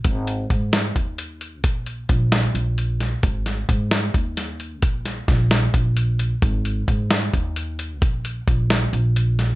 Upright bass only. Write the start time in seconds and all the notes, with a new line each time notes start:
0.05 G#1
0.50 G#2
0.96 D#2
1.64 A#1
2.09 A#1
2.55 A#1
3.23 G#1
3.69 G#2
4.14 D#2
4.83 A#1
5.28 A#1
5.74 A#1
6.42 G#1
6.88 G#2
7.34 D#2
8.02 A#1
8.47 A#1
8.93 A#1